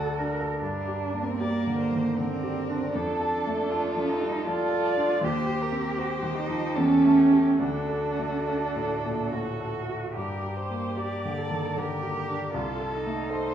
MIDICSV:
0, 0, Header, 1, 5, 480
1, 0, Start_track
1, 0, Key_signature, -2, "minor"
1, 0, Tempo, 816327
1, 353, Time_signature, 3, 2, 24, 8
1, 820, Tempo, 766284
1, 4180, Tempo, 851064
1, 6100, Tempo, 806452
1, 7060, Tempo, 772201
1, 8159, End_track
2, 0, Start_track
2, 0, Title_t, "Violin"
2, 0, Program_c, 0, 40
2, 0, Note_on_c, 0, 66, 50
2, 223, Note_off_c, 0, 66, 0
2, 814, Note_on_c, 0, 74, 46
2, 1041, Note_off_c, 0, 74, 0
2, 1063, Note_on_c, 0, 72, 46
2, 1305, Note_on_c, 0, 70, 47
2, 1315, Note_off_c, 0, 72, 0
2, 1789, Note_on_c, 0, 69, 54
2, 1798, Note_off_c, 0, 70, 0
2, 2266, Note_on_c, 0, 65, 51
2, 2275, Note_off_c, 0, 69, 0
2, 2747, Note_on_c, 0, 69, 48
2, 2757, Note_off_c, 0, 65, 0
2, 2987, Note_on_c, 0, 74, 56
2, 2997, Note_off_c, 0, 69, 0
2, 3220, Note_off_c, 0, 74, 0
2, 3230, Note_on_c, 0, 72, 68
2, 3464, Note_on_c, 0, 70, 61
2, 3474, Note_off_c, 0, 72, 0
2, 3697, Note_on_c, 0, 72, 61
2, 3706, Note_off_c, 0, 70, 0
2, 4178, Note_on_c, 0, 69, 57
2, 4186, Note_off_c, 0, 72, 0
2, 4421, Note_on_c, 0, 67, 50
2, 4429, Note_off_c, 0, 69, 0
2, 4651, Note_off_c, 0, 67, 0
2, 4654, Note_on_c, 0, 66, 55
2, 5843, Note_off_c, 0, 66, 0
2, 6586, Note_on_c, 0, 74, 46
2, 7070, Note_on_c, 0, 70, 46
2, 7079, Note_off_c, 0, 74, 0
2, 7541, Note_on_c, 0, 69, 49
2, 7550, Note_off_c, 0, 70, 0
2, 8005, Note_on_c, 0, 72, 49
2, 8015, Note_off_c, 0, 69, 0
2, 8159, Note_off_c, 0, 72, 0
2, 8159, End_track
3, 0, Start_track
3, 0, Title_t, "Violin"
3, 0, Program_c, 1, 40
3, 0, Note_on_c, 1, 74, 69
3, 108, Note_off_c, 1, 74, 0
3, 351, Note_on_c, 1, 70, 42
3, 1312, Note_on_c, 1, 74, 41
3, 1321, Note_off_c, 1, 70, 0
3, 1778, Note_off_c, 1, 74, 0
3, 1782, Note_on_c, 1, 69, 47
3, 2019, Note_off_c, 1, 69, 0
3, 2027, Note_on_c, 1, 69, 45
3, 2741, Note_on_c, 1, 74, 54
3, 2750, Note_off_c, 1, 69, 0
3, 3226, Note_on_c, 1, 67, 56
3, 3235, Note_off_c, 1, 74, 0
3, 4649, Note_off_c, 1, 67, 0
3, 4652, Note_on_c, 1, 69, 49
3, 5959, Note_off_c, 1, 69, 0
3, 6092, Note_on_c, 1, 70, 40
3, 6340, Note_on_c, 1, 72, 45
3, 6349, Note_off_c, 1, 70, 0
3, 6582, Note_on_c, 1, 70, 38
3, 6590, Note_off_c, 1, 72, 0
3, 7530, Note_off_c, 1, 70, 0
3, 7534, Note_on_c, 1, 69, 45
3, 8006, Note_off_c, 1, 69, 0
3, 8021, Note_on_c, 1, 72, 48
3, 8159, Note_off_c, 1, 72, 0
3, 8159, End_track
4, 0, Start_track
4, 0, Title_t, "Cello"
4, 0, Program_c, 2, 42
4, 0, Note_on_c, 2, 69, 65
4, 108, Note_on_c, 2, 70, 54
4, 116, Note_off_c, 2, 69, 0
4, 349, Note_off_c, 2, 70, 0
4, 353, Note_on_c, 2, 62, 57
4, 721, Note_on_c, 2, 60, 53
4, 730, Note_off_c, 2, 62, 0
4, 823, Note_on_c, 2, 58, 64
4, 832, Note_off_c, 2, 60, 0
4, 1305, Note_on_c, 2, 60, 64
4, 1314, Note_off_c, 2, 58, 0
4, 1783, Note_off_c, 2, 60, 0
4, 1787, Note_on_c, 2, 62, 66
4, 2507, Note_on_c, 2, 63, 64
4, 2516, Note_off_c, 2, 62, 0
4, 2736, Note_off_c, 2, 63, 0
4, 2740, Note_on_c, 2, 65, 87
4, 3227, Note_on_c, 2, 67, 71
4, 3236, Note_off_c, 2, 65, 0
4, 3927, Note_on_c, 2, 63, 72
4, 3936, Note_off_c, 2, 67, 0
4, 4180, Note_on_c, 2, 61, 83
4, 4189, Note_off_c, 2, 63, 0
4, 4646, Note_on_c, 2, 62, 63
4, 4654, Note_off_c, 2, 61, 0
4, 5626, Note_on_c, 2, 66, 58
4, 5635, Note_off_c, 2, 62, 0
4, 6091, Note_off_c, 2, 66, 0
4, 6094, Note_on_c, 2, 67, 54
4, 6823, Note_on_c, 2, 69, 57
4, 6832, Note_off_c, 2, 67, 0
4, 7057, Note_on_c, 2, 67, 71
4, 7066, Note_off_c, 2, 69, 0
4, 7532, Note_off_c, 2, 67, 0
4, 7536, Note_on_c, 2, 65, 53
4, 7781, Note_on_c, 2, 63, 57
4, 7790, Note_off_c, 2, 65, 0
4, 8159, Note_off_c, 2, 63, 0
4, 8159, End_track
5, 0, Start_track
5, 0, Title_t, "Grand piano"
5, 0, Program_c, 3, 0
5, 0, Control_c, 3, 64, 127
5, 0, Note_on_c, 3, 38, 46
5, 0, Note_on_c, 3, 69, 44
5, 117, Note_on_c, 3, 62, 34
5, 188, Note_off_c, 3, 69, 0
5, 238, Note_on_c, 3, 69, 42
5, 311, Note_off_c, 3, 62, 0
5, 344, Note_off_c, 3, 38, 0
5, 357, Note_off_c, 3, 69, 0
5, 362, Note_on_c, 3, 43, 40
5, 364, Control_c, 3, 64, 0
5, 457, Control_c, 3, 64, 127
5, 517, Note_on_c, 3, 67, 33
5, 671, Note_on_c, 3, 58, 31
5, 761, Note_off_c, 3, 67, 0
5, 826, Note_on_c, 3, 67, 42
5, 919, Note_off_c, 3, 58, 0
5, 993, Note_on_c, 3, 50, 32
5, 1080, Note_off_c, 3, 67, 0
5, 1151, Note_on_c, 3, 51, 32
5, 1243, Note_off_c, 3, 50, 0
5, 1306, Note_off_c, 3, 51, 0
5, 1316, Note_on_c, 3, 50, 30
5, 1470, Note_on_c, 3, 67, 39
5, 1566, Note_off_c, 3, 50, 0
5, 1636, Note_on_c, 3, 62, 37
5, 1724, Note_off_c, 3, 67, 0
5, 1764, Note_off_c, 3, 43, 0
5, 1791, Note_off_c, 3, 62, 0
5, 1795, Note_on_c, 3, 41, 47
5, 1796, Control_c, 3, 64, 0
5, 1895, Control_c, 3, 64, 127
5, 1954, Note_on_c, 3, 69, 42
5, 2119, Note_on_c, 3, 57, 38
5, 2204, Note_off_c, 3, 69, 0
5, 2275, Note_on_c, 3, 69, 46
5, 2364, Note_off_c, 3, 57, 0
5, 2430, Note_on_c, 3, 53, 39
5, 2521, Note_off_c, 3, 69, 0
5, 2589, Note_on_c, 3, 55, 33
5, 2677, Note_off_c, 3, 53, 0
5, 2742, Note_off_c, 3, 55, 0
5, 2747, Note_on_c, 3, 53, 40
5, 2897, Note_on_c, 3, 69, 47
5, 2997, Note_off_c, 3, 53, 0
5, 3057, Note_on_c, 3, 62, 44
5, 3152, Note_off_c, 3, 69, 0
5, 3194, Note_off_c, 3, 41, 0
5, 3211, Note_on_c, 3, 39, 57
5, 3215, Note_off_c, 3, 62, 0
5, 3226, Control_c, 3, 64, 0
5, 3311, Control_c, 3, 64, 127
5, 3369, Note_on_c, 3, 67, 50
5, 3528, Note_on_c, 3, 60, 43
5, 3621, Note_off_c, 3, 67, 0
5, 3685, Note_on_c, 3, 67, 48
5, 3783, Note_off_c, 3, 60, 0
5, 3846, Note_on_c, 3, 51, 42
5, 3945, Note_off_c, 3, 67, 0
5, 4014, Note_on_c, 3, 53, 40
5, 4112, Note_off_c, 3, 51, 0
5, 4154, Note_off_c, 3, 39, 0
5, 4181, Note_off_c, 3, 53, 0
5, 4187, Note_on_c, 3, 40, 52
5, 4191, Control_c, 3, 64, 0
5, 4295, Control_c, 3, 64, 127
5, 4344, Note_on_c, 3, 57, 44
5, 4496, Note_on_c, 3, 67, 37
5, 4499, Note_on_c, 3, 69, 40
5, 4592, Note_off_c, 3, 57, 0
5, 4639, Note_off_c, 3, 67, 0
5, 4641, Note_off_c, 3, 69, 0
5, 4642, Note_off_c, 3, 40, 0
5, 4656, Note_on_c, 3, 38, 46
5, 4664, Control_c, 3, 64, 0
5, 4785, Control_c, 3, 64, 127
5, 4819, Note_on_c, 3, 69, 39
5, 4984, Note_on_c, 3, 57, 29
5, 5082, Note_off_c, 3, 69, 0
5, 5151, Note_on_c, 3, 69, 39
5, 5244, Note_off_c, 3, 57, 0
5, 5307, Note_on_c, 3, 45, 31
5, 5407, Note_off_c, 3, 69, 0
5, 5468, Note_on_c, 3, 46, 27
5, 5564, Note_off_c, 3, 45, 0
5, 5627, Note_off_c, 3, 46, 0
5, 5627, Note_on_c, 3, 45, 28
5, 5785, Note_on_c, 3, 69, 35
5, 5880, Note_off_c, 3, 45, 0
5, 5942, Note_on_c, 3, 66, 29
5, 6037, Note_off_c, 3, 69, 0
5, 6078, Note_off_c, 3, 38, 0
5, 6097, Note_on_c, 3, 43, 42
5, 6098, Note_off_c, 3, 66, 0
5, 6109, Control_c, 3, 64, 0
5, 6209, Control_c, 3, 64, 127
5, 6255, Note_on_c, 3, 67, 37
5, 6423, Note_on_c, 3, 58, 30
5, 6518, Note_off_c, 3, 67, 0
5, 6577, Note_on_c, 3, 67, 39
5, 6681, Note_off_c, 3, 58, 0
5, 6749, Note_on_c, 3, 50, 30
5, 6836, Note_off_c, 3, 67, 0
5, 6901, Note_on_c, 3, 51, 29
5, 6998, Note_off_c, 3, 50, 0
5, 7053, Note_on_c, 3, 50, 27
5, 7057, Note_off_c, 3, 51, 0
5, 7215, Note_on_c, 3, 67, 35
5, 7313, Note_off_c, 3, 50, 0
5, 7379, Note_on_c, 3, 62, 32
5, 7473, Note_off_c, 3, 67, 0
5, 7513, Note_off_c, 3, 43, 0
5, 7535, Note_on_c, 3, 36, 48
5, 7539, Note_off_c, 3, 62, 0
5, 7550, Control_c, 3, 64, 0
5, 7644, Control_c, 3, 64, 127
5, 7698, Note_on_c, 3, 69, 42
5, 7862, Note_on_c, 3, 57, 35
5, 7954, Note_off_c, 3, 69, 0
5, 8012, Note_on_c, 3, 69, 44
5, 8116, Note_off_c, 3, 57, 0
5, 8159, Note_off_c, 3, 36, 0
5, 8159, Note_off_c, 3, 69, 0
5, 8159, End_track
0, 0, End_of_file